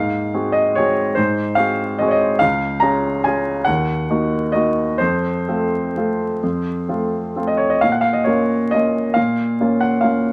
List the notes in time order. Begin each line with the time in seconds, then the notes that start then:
Already playing: G#2 F5
0.34 C4 F#4 G#4
0.52 D#5
0.75 C4 F#4 G#4 C#5
1.15 G#2 C5
1.55 C4 F#4 G#4 F5
1.99 C4 F#4 G#4 D#5
2.08 C#5 D#5
2.39 C#2 F5
2.80 C#4 F4 G#4 A#5
3.24 C#4 F4 G#4 G#5
3.65 D#2 F#5
4.10 A#3 D#4 F#4
4.52 A#3 D#4 F#4 D#5
4.98 F2 C5
5.48 A3 C4 F4
5.96 A3 C4 F4
6.43 F2
6.89 A3 C4 F4
7.36 A3 C4 F4
7.47 D#5
7.57 C#5
7.70 D#5
7.81 A#2 F5
7.92 F#5
8.01 F5
8.13 D#5
8.24 A#3 C#4 F4 C#5
8.71 A#3 C#4 F4 D#5
9.14 A#2 F5
9.60 A#3 C#4 F4
9.81 F#5
10.01 A#3 C#4 F4 F5